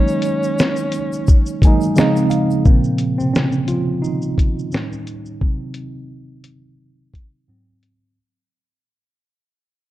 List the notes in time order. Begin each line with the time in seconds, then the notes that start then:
Already playing: D#3 F#3 G#3 A#3 C#4 D#4
0.07 shaker
0.22 closed hi-hat, shaker
0.24 shaker
0.43 shaker
0.58 snare, shaker
0.76 shaker
0.92 closed hi-hat, shaker
0.93 shaker
1.12 shaker
1.27 kick, shaker
1.46 shaker
1.62 D#3 F#3 G#3 G#5, kick, closed hi-hat, shaker
1.66 A#3 D#4
1.81 shaker
1.83 shaker
1.95 C#3 F3 G#3 C4 G#4 F5, snare, shaker
2.00 D#4
2.16 shaker
2.30 F5, closed hi-hat, shaker
2.51 shaker
2.65 A#2 C#3 F3 A#3 C4, kick, shaker
2.84 shaker
2.98 closed hi-hat, shaker
3.18 C3 C4, shaker
3.33 C#3 C#4, snare, shaker
3.52 shaker
3.68 F3 F4, closed hi-hat, shaker
4.02 D#3 D#4, shaker
4.22 shaker
4.38 kick, closed hi-hat, shaker
4.59 shaker
4.72 A2 G3 C#4, snare, shaker
4.92 shaker
5.07 closed hi-hat, shaker
5.26 shaker
5.41 C3 F#3 C4, kick
5.74 closed hi-hat
6.44 closed hi-hat
7.14 kick, closed hi-hat
7.48 G#2 F#3 C4
7.83 closed hi-hat